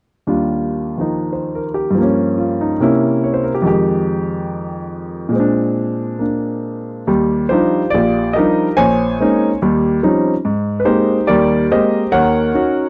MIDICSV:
0, 0, Header, 1, 2, 480
1, 0, Start_track
1, 0, Key_signature, -3, "major"
1, 0, Tempo, 422238
1, 313, Time_signature, 4, 2, 24, 8
1, 6542, Tempo, 430725
1, 9902, Tempo, 420463
1, 14607, End_track
2, 0, Start_track
2, 0, Title_t, "Grand piano"
2, 0, Program_c, 0, 0
2, 307, Note_on_c, 0, 39, 39
2, 311, Note_on_c, 0, 62, 35
2, 320, Note_on_c, 0, 65, 45
2, 328, Note_on_c, 0, 55, 37
2, 1109, Note_on_c, 0, 51, 37
2, 1136, Note_on_c, 0, 53, 33
2, 1146, Note_on_c, 0, 63, 39
2, 1508, Note_on_c, 0, 72, 34
2, 1763, Note_on_c, 0, 70, 37
2, 1849, Note_off_c, 0, 72, 0
2, 1981, Note_on_c, 0, 67, 42
2, 2138, Note_off_c, 0, 70, 0
2, 2166, Note_on_c, 0, 43, 45
2, 2199, Note_off_c, 0, 53, 0
2, 2216, Note_on_c, 0, 53, 41
2, 2235, Note_off_c, 0, 51, 0
2, 2241, Note_off_c, 0, 39, 0
2, 2243, Note_off_c, 0, 62, 0
2, 2248, Note_off_c, 0, 65, 0
2, 2252, Note_off_c, 0, 55, 0
2, 2253, Note_off_c, 0, 63, 0
2, 2253, Note_on_c, 0, 58, 43
2, 2299, Note_on_c, 0, 61, 51
2, 2329, Note_off_c, 0, 67, 0
2, 2704, Note_on_c, 0, 65, 41
2, 2966, Note_on_c, 0, 63, 45
2, 3085, Note_off_c, 0, 65, 0
2, 3162, Note_off_c, 0, 43, 0
2, 3176, Note_off_c, 0, 58, 0
2, 3184, Note_on_c, 0, 48, 50
2, 3185, Note_off_c, 0, 61, 0
2, 3187, Note_off_c, 0, 53, 0
2, 3193, Note_on_c, 0, 58, 47
2, 3202, Note_on_c, 0, 61, 46
2, 3210, Note_on_c, 0, 64, 60
2, 3297, Note_off_c, 0, 63, 0
2, 3679, Note_on_c, 0, 73, 43
2, 3793, Note_on_c, 0, 72, 46
2, 3900, Note_off_c, 0, 73, 0
2, 3908, Note_on_c, 0, 70, 43
2, 3998, Note_off_c, 0, 72, 0
2, 4030, Note_on_c, 0, 67, 49
2, 4055, Note_off_c, 0, 70, 0
2, 4114, Note_on_c, 0, 41, 54
2, 4128, Note_on_c, 0, 51, 49
2, 4140, Note_off_c, 0, 48, 0
2, 4145, Note_off_c, 0, 58, 0
2, 4149, Note_off_c, 0, 61, 0
2, 4153, Note_off_c, 0, 64, 0
2, 4154, Note_on_c, 0, 56, 48
2, 4159, Note_off_c, 0, 67, 0
2, 4176, Note_on_c, 0, 67, 61
2, 6011, Note_on_c, 0, 46, 53
2, 6026, Note_off_c, 0, 56, 0
2, 6043, Note_on_c, 0, 56, 46
2, 6046, Note_off_c, 0, 41, 0
2, 6053, Note_off_c, 0, 51, 0
2, 6077, Note_off_c, 0, 67, 0
2, 6086, Note_on_c, 0, 60, 48
2, 6136, Note_on_c, 0, 62, 56
2, 7025, Note_on_c, 0, 58, 32
2, 7038, Note_off_c, 0, 62, 0
2, 7055, Note_on_c, 0, 62, 38
2, 7976, Note_off_c, 0, 46, 0
2, 7992, Note_off_c, 0, 56, 0
2, 8003, Note_off_c, 0, 58, 0
2, 8011, Note_on_c, 0, 39, 57
2, 8013, Note_off_c, 0, 60, 0
2, 8018, Note_off_c, 0, 62, 0
2, 8018, Note_on_c, 0, 55, 59
2, 8423, Note_off_c, 0, 39, 0
2, 8427, Note_off_c, 0, 55, 0
2, 8477, Note_on_c, 0, 72, 64
2, 8493, Note_on_c, 0, 67, 46
2, 8497, Note_on_c, 0, 65, 46
2, 8506, Note_on_c, 0, 55, 42
2, 8512, Note_on_c, 0, 53, 45
2, 8517, Note_on_c, 0, 63, 50
2, 8522, Note_on_c, 0, 62, 42
2, 8830, Note_off_c, 0, 55, 0
2, 8833, Note_off_c, 0, 53, 0
2, 8835, Note_off_c, 0, 63, 0
2, 8838, Note_off_c, 0, 62, 0
2, 8937, Note_on_c, 0, 74, 77
2, 8963, Note_off_c, 0, 65, 0
2, 8963, Note_off_c, 0, 67, 0
2, 8967, Note_off_c, 0, 72, 0
2, 8979, Note_on_c, 0, 65, 53
2, 8980, Note_on_c, 0, 67, 50
2, 8982, Note_on_c, 0, 34, 59
2, 9382, Note_off_c, 0, 34, 0
2, 9416, Note_on_c, 0, 75, 74
2, 9424, Note_off_c, 0, 67, 0
2, 9435, Note_off_c, 0, 74, 0
2, 9441, Note_on_c, 0, 67, 54
2, 9446, Note_on_c, 0, 70, 55
2, 9466, Note_on_c, 0, 55, 43
2, 9471, Note_on_c, 0, 53, 47
2, 9471, Note_on_c, 0, 62, 42
2, 9476, Note_on_c, 0, 63, 55
2, 9784, Note_off_c, 0, 55, 0
2, 9787, Note_off_c, 0, 53, 0
2, 9787, Note_off_c, 0, 62, 0
2, 9789, Note_off_c, 0, 63, 0
2, 9870, Note_off_c, 0, 65, 0
2, 9875, Note_off_c, 0, 67, 0
2, 9878, Note_off_c, 0, 70, 0
2, 9899, Note_on_c, 0, 80, 89
2, 9902, Note_on_c, 0, 72, 65
2, 9902, Note_on_c, 0, 73, 62
2, 9910, Note_off_c, 0, 75, 0
2, 9920, Note_on_c, 0, 34, 59
2, 10329, Note_off_c, 0, 34, 0
2, 10394, Note_on_c, 0, 58, 46
2, 10396, Note_on_c, 0, 56, 46
2, 10398, Note_on_c, 0, 60, 41
2, 10398, Note_on_c, 0, 61, 42
2, 10415, Note_on_c, 0, 63, 58
2, 10728, Note_off_c, 0, 58, 0
2, 10730, Note_off_c, 0, 56, 0
2, 10731, Note_off_c, 0, 60, 0
2, 10731, Note_off_c, 0, 61, 0
2, 10739, Note_off_c, 0, 63, 0
2, 10814, Note_off_c, 0, 80, 0
2, 10816, Note_off_c, 0, 72, 0
2, 10816, Note_off_c, 0, 73, 0
2, 10872, Note_on_c, 0, 39, 63
2, 10878, Note_on_c, 0, 55, 62
2, 11285, Note_off_c, 0, 39, 0
2, 11288, Note_off_c, 0, 55, 0
2, 11340, Note_on_c, 0, 60, 45
2, 11341, Note_on_c, 0, 55, 44
2, 11344, Note_on_c, 0, 53, 47
2, 11348, Note_on_c, 0, 61, 47
2, 11349, Note_on_c, 0, 63, 55
2, 11681, Note_off_c, 0, 60, 0
2, 11682, Note_off_c, 0, 55, 0
2, 11683, Note_off_c, 0, 53, 0
2, 11685, Note_off_c, 0, 61, 0
2, 11685, Note_off_c, 0, 63, 0
2, 11819, Note_on_c, 0, 44, 64
2, 12216, Note_on_c, 0, 71, 54
2, 12236, Note_off_c, 0, 44, 0
2, 12277, Note_on_c, 0, 67, 53
2, 12280, Note_on_c, 0, 63, 50
2, 12282, Note_on_c, 0, 72, 70
2, 12283, Note_off_c, 0, 71, 0
2, 12299, Note_on_c, 0, 58, 45
2, 12301, Note_on_c, 0, 60, 48
2, 12302, Note_on_c, 0, 56, 51
2, 12639, Note_off_c, 0, 58, 0
2, 12640, Note_off_c, 0, 60, 0
2, 12641, Note_off_c, 0, 56, 0
2, 12736, Note_off_c, 0, 72, 0
2, 12740, Note_off_c, 0, 67, 0
2, 12758, Note_on_c, 0, 67, 52
2, 12760, Note_on_c, 0, 74, 76
2, 12763, Note_on_c, 0, 70, 52
2, 12781, Note_on_c, 0, 39, 62
2, 12781, Note_on_c, 0, 55, 58
2, 13198, Note_off_c, 0, 39, 0
2, 13198, Note_off_c, 0, 55, 0
2, 13204, Note_off_c, 0, 63, 0
2, 13216, Note_off_c, 0, 74, 0
2, 13246, Note_off_c, 0, 67, 0
2, 13263, Note_on_c, 0, 67, 57
2, 13265, Note_on_c, 0, 72, 55
2, 13268, Note_on_c, 0, 75, 69
2, 13280, Note_on_c, 0, 58, 44
2, 13289, Note_on_c, 0, 56, 46
2, 13290, Note_on_c, 0, 60, 46
2, 13609, Note_off_c, 0, 58, 0
2, 13614, Note_off_c, 0, 56, 0
2, 13614, Note_off_c, 0, 60, 0
2, 13683, Note_off_c, 0, 70, 0
2, 13706, Note_off_c, 0, 67, 0
2, 13707, Note_off_c, 0, 72, 0
2, 13708, Note_off_c, 0, 75, 0
2, 13724, Note_on_c, 0, 70, 64
2, 13727, Note_on_c, 0, 73, 68
2, 13728, Note_on_c, 0, 78, 88
2, 13742, Note_on_c, 0, 51, 57
2, 13749, Note_on_c, 0, 39, 58
2, 14157, Note_off_c, 0, 51, 0
2, 14161, Note_off_c, 0, 39, 0
2, 14211, Note_on_c, 0, 61, 48
2, 14212, Note_on_c, 0, 63, 41
2, 14220, Note_on_c, 0, 66, 55
2, 14560, Note_off_c, 0, 61, 0
2, 14561, Note_off_c, 0, 63, 0
2, 14565, Note_off_c, 0, 66, 0
2, 14607, Note_off_c, 0, 70, 0
2, 14607, Note_off_c, 0, 73, 0
2, 14607, Note_off_c, 0, 78, 0
2, 14607, End_track
0, 0, End_of_file